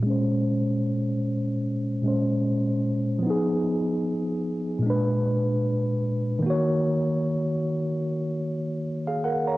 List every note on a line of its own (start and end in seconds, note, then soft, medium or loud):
0.00 1.97 A#2 medium
0.00 1.99 G#3 medium
0.06 2.01 C#4 medium
0.06 2.03 C5 medium
2.02 3.23 A#2 medium
2.02 3.24 G#3 medium
2.02 3.25 C#4 soft
2.08 3.26 C5 medium
3.19 4.78 F3 medium
3.19 4.80 B3 medium
3.26 4.82 D#4 medium
3.26 4.84 G#4 medium
4.79 6.38 A#2 medium
4.79 6.40 G#3 medium
4.86 6.42 D4 medium
4.86 6.44 B4 medium
6.39 9.57 D#3 medium
6.39 9.57 A#3 medium
6.46 9.57 F#4 medium
6.46 8.83 C#5 medium
9.07 9.24 G#4 medium
9.07 9.23 F5 medium
9.24 9.46 A#4 soft
9.24 9.46 F#5 medium
9.47 9.57 C#5 medium
9.47 9.57 A#5 soft